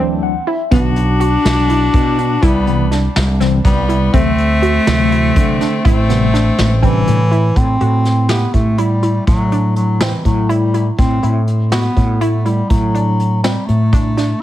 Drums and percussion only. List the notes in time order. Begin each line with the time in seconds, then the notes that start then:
0.71 kick, closed hi-hat
0.96 closed hi-hat
1.21 closed hi-hat
1.45 snare, closed hi-hat
1.70 closed hi-hat
1.94 kick, closed hi-hat
2.18 closed hi-hat
2.42 kick, closed hi-hat
2.67 closed hi-hat
2.92 snare, closed hi-hat
3.16 snare, closed hi-hat
3.41 snare, closed hi-hat
3.65 kick, closed hi-hat
3.89 closed hi-hat
4.13 kick, closed hi-hat
4.38 closed hi-hat
4.63 closed hi-hat
4.87 snare, closed hi-hat
5.12 closed hi-hat
5.36 kick, closed hi-hat
5.61 snare, closed hi-hat
5.85 kick, closed hi-hat
6.10 snare, closed hi-hat
6.34 snare, closed hi-hat
6.59 snare, closed hi-hat
6.83 kick, closed hi-hat
7.07 closed hi-hat
7.32 closed hi-hat
7.56 kick, closed hi-hat
7.81 closed hi-hat
8.05 snare, closed hi-hat
8.29 snare, closed hi-hat
8.54 kick, closed hi-hat
8.78 closed hi-hat
9.03 closed hi-hat
9.27 kick, closed hi-hat
9.52 closed hi-hat
9.76 closed hi-hat
10.01 snare, closed hi-hat
10.25 kick, closed hi-hat
10.50 closed hi-hat
10.74 closed hi-hat
10.98 kick, closed hi-hat
11.23 closed hi-hat
11.48 closed hi-hat
11.72 snare, closed hi-hat
11.97 kick, closed hi-hat
12.21 closed hi-hat
12.46 closed hi-hat
12.70 kick, closed hi-hat
12.95 closed hi-hat
13.20 closed hi-hat
13.44 snare, closed hi-hat
13.68 closed hi-hat
13.93 kick, closed hi-hat
14.18 snare, closed hi-hat